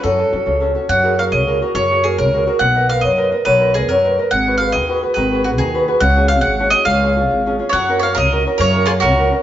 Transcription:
X:1
M:6/8
L:1/16
Q:3/8=140
K:F#m
V:1 name="Mandolin"
A8 z4 | [K:F#] f4 e2 d4 z2 | c4 G2 A4 z2 | f4 e2 d4 z2 |
B4 G2 A4 z2 | f4 e2 d4 z2 | B4 F2 G4 z2 | f4 e2 f4 d2 |
e8- e2 z2 | f4 e2 d4 z2 | c4 G2 A4 z2 |]
V:2 name="Mandolin"
z12 | [K:F#] z12 | z12 | z12 |
z12 | z12 | z12 | z12 |
z12 | c4 c2 A4 z2 | A4 E2 F4 z2 |]
V:3 name="Nylon-string guitar"
F,2 [CFA]2 [CFA]2 C,2 [CFA]2 [CFA]2 | [K:F#] F,2 [FGA]2 [FGA]2 C,2 [FGA]2 [FGA]2 | C,2 [FGA]2 [FGA]2 C,2 [FGA]2 [FGA]2 | B,2 [ABd]2 [ABd]2 F,2 [ABd]2 [ABd]2 |
F,2 [ABd]2 [ABd]2 F,2 [ABd]2 [ABd]2 | G,2 [FGB]2 [FGB]2 D,2 [FGB]2 [FGB]2 | D,2 [FGB]2 [FGB]2 D,2 [FGB]2 [FGB]2 | C,2 [CFG]2 [CFG]2 G,2 [CFG]2 [CFG]2 |
C,2 [CEG]2 [CEG]2 G,2 [CEG]2 [CEG]2 | F,2 [CFA]2 [CFA]2 C,2 [CFA]2 [CFA]2 | C,2 [CFA]2 [CFA]2 C,2 [CFA]2 [CFA]2 |]
V:4 name="Upright bass" clef=bass
F,,4 F,, z C,,6 | [K:F#] F,,6 C,,6 | F,,6 C,,6 | B,,,6 F,,6 |
B,,,6 F,,6 | G,,,6 D,,6 | G,,,6 D,,6 | C,,6 G,,,6 |
C,,6 G,,,6 | F,,6 C,,6 | F,,6 C,,6 |]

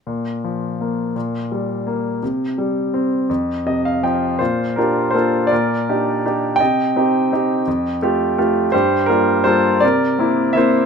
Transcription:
X:1
M:6/8
L:1/16
Q:3/8=55
K:Bb
V:1 name="Grand piano"
z12 | z8 e f g2 | [Fc]2 [GB]2 [Ac]2 [Bd]6 | [eg]8 z4 |
[Gc]2 [GB]2 [Ac]2 [Bd]4 [c=e]2 |]
V:2 name="Grand piano"
B,,2 F,2 B,2 B,,2 G,2 B,2 | C,2 G,2 C2 F,,2 C,2 F,2 | B,,2 [B,DF]2 [B,DF]2 B,,2 [DEG]2 [DEG]2 | C,2 [CEG]2 [CEG]2 F,,2 [A,FG]2 [A,FG]2 |
G,,2 [G,B,F]2 [G,B,F]2 C,2 [B,C=E]2 [B,CE]2 |]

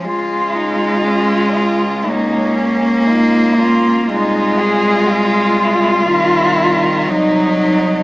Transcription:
X:1
M:4/4
L:1/8
Q:1/4=60
K:Db
V:1 name="Cello"
F E D F E D F D | E A F4 E2 |]
V:2 name="Cello"
F4 D2 E F | F6 E E |]
V:3 name="Cello" clef=bass
A,4 B,4 | A,4 E,2 G,2 |]
V:4 name="Cello" clef=bass
D,,8 | C,,8 |]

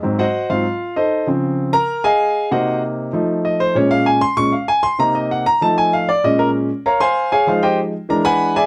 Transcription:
X:1
M:4/4
L:1/8
Q:1/4=194
K:Bbm
V:1 name="Grand piano"
z [Gceg]2 [Ff]3 [E=Ace]2 | z3 [Bb]2 [Aefa]3 | [Gceg]2 z4 e c | d f a c' d' f a c' |
b e g b =a ^g f =d | e B z2 [Bdfb] [cfac']2 [Adfa] | [FAcf] [=Gce=g] z2 [Bb] [=B^f^g=b]2 [^G=d=eg] |]
V:2 name="Grand piano" clef=bass
[A,,G,C] z2 [A,,G,C] z4 | [D,F,C]3 z4 z | [C,B,E]4 [F,=A,E]4 | [B,,A,D]3 z [B,,A,D] z3 |
[C,B,E]3 z [F,=A,E]3 z | [B,,A,D]3 z4 z | [F,A,E]3 z [=E,^G,=D]3 z |]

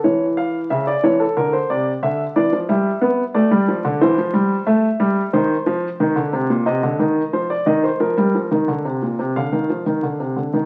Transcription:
X:1
M:4/4
L:1/16
Q:1/4=90
K:Cdor
V:1 name="Grand piano"
^c2 f2 =e d c A B =c d2 e2 d2 | =e4 d4 c4 e4 | [K:Cm] c8 e4 c d e c | B8 f6 z2 |]
V:2 name="Grand piano" clef=bass
=E,4 ^C,2 E,2 D,2 =C,2 D,2 E, F, | G,2 =B,2 A, G, F, D, =E, F, G,2 A,2 G,2 | [K:Cm] E,2 F,2 E, D, C, B,, C, D, E,2 F,2 E,2 | F, G, F, E, D, C, B,, C, D, E, F, E, D, C, D, E, |]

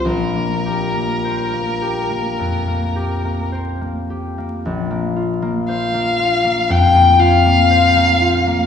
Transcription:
X:1
M:4/4
L:1/16
Q:1/4=57
K:Cdor
V:1 name="Violin"
B12 z4 | z4 f4 g2 f6 |]
V:2 name="Harp"
[B,,,B,Fc] B, G B, c B, G B, F,, B, G B, c B, G B, | B,,, B, F B, c B, F B, F,, B, F B, c B, F B, |]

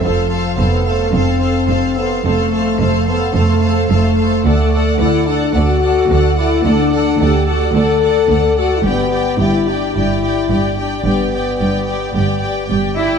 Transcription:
X:1
M:4/4
L:1/8
Q:1/4=109
K:Flyd
V:1 name="Violin section"
f f f f f f f f | f f f f f f f f | ^f f f f f f f f | ^f f f f f f f f |
g g g g g g g g | g g g g g g g g |]
V:2 name="Violin section"
c c c c c c c c | c c c c c c c c | d d d d d d d d | d d d d d d d d |
d d d d d d d d | d d d d d d d d |]
V:3 name="Viola section"
A A A A A A A A | A A A A A A A A | A A A A A A A A | A A A A A A A A |
G G G G G G G G | G G G G G G G G |]
V:4 name="French horn section"
F,2 B, A, C3 B, | A,3 B, A,2 A,2 | A,2 E D ^F3 E | D2 G ^F A3 F |
B,2 E D E3 D | B,6 z2 |]
V:5 name="Cello section" clef=bass
F,,2 F,,2 F,,2 F,,2 | F,,2 F,,2 F,,2 F,,2 | D,,2 D,,2 D,,2 D,,2 | D,,2 D,,2 D,,2 D,,2 |
G,,2 G,,2 G,,2 G,,2 | G,,2 G,,2 G,,2 G,, E |]
V:6 name="Double bass section" clef=bass
F,,,2 F,,,2 F,,,2 F,,,2 | F,,,2 F,,,2 F,,,2 F,,,2 | D,,2 D,,2 D,,2 D,,2 | D,,2 D,,2 D,,2 D,,2 |
G,,,2 G,,,2 G,,,2 G,,,2 | G,,,2 G,,,2 G,,,2 G,,,2 |]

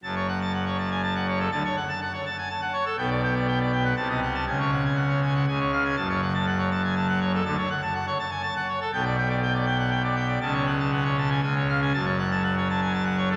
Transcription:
X:1
M:3/4
L:1/16
Q:1/4=121
K:F#m
V:1 name="Pipe organ"
a c f a f c a g a f c A | a c f a f c a g a f c A | =g d g d g d g f a _e _g a | g c f g f c g f g c ^e g |
a c f a f c a g a f c A | a c f a f c a g a f c A | =g d g d g d g f g d g d | a c f a f c a g g c ^e g |
a c f a f c a g a f c A |]
V:2 name="Pipe organ" clef=bass
[F,,,F,,]12 | [D,,D,] z8 z3 | [B,,,B,,]8 =C,4 | [C,,C,]8 [C,,C,]4 |
[F,,,F,,]12 | [D,,D,] z8 z3 | [B,,,B,,]12 | [C,,C,]8 [C,,C,]4 |
[F,,,F,,]12 |]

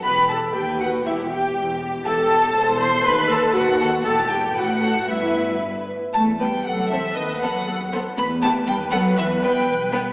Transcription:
X:1
M:2/4
L:1/16
Q:1/4=119
K:Em
V:1 name="Violin section"
G4 B4 | G8- | G4 c4 | B4 B2 A2 |
G4 B2 A2 | B6 z2 | a2 g2 f2 e2 | ^d2 f4 z2 |
b2 a2 g2 f2 | e2 g4 z2 |]
V:2 name="Violin section"
b2 a2 g2 f2 | e2 g4 z2 | a6 c'2 | b2 a2 f4 |
a2 g2 f4 | e4 z4 | z2 [B,B] z3 [CA] z | z2 [B,A] z3 [B,A] z |
z2 [B,G] z3 [B,A] z | z2 [B,B] z3 [B,B] z |]
V:3 name="Viola section"
B2 A2 G2 F2 | E2 G4 z2 | A6 c2 | B2 A2 F4 |
A2 G2 F4 | E4 z4 | z4 A4 | B4 A2 c2 |
B8- | B8 |]
V:4 name="Cello section" clef=bass
E,,4 ^D,,4 | E,,4 E,,4 | E,,4 E,,4 | ^D,,4 D,,4 |
E,,4 A,,4 | G,,6 z2 | A,2 G,2 F,2 E,2 | ^D,2 F,4 z2 |
B,2 A,2 G,2 F,2 | E,2 G,4 z2 |]
V:5 name="Double bass section" clef=bass
E,,,4 ^D,,4 | E,,,4 E,,,4 | E,,,4 E,,,4 | ^D,,4 D,,4 |
E,,,4 A,,,4 | G,,,6 z2 | E,,4 C,,4 | ^D,,4 D,,4 |
E,,4 ^D,,4 | E,,4 B,,,4 |]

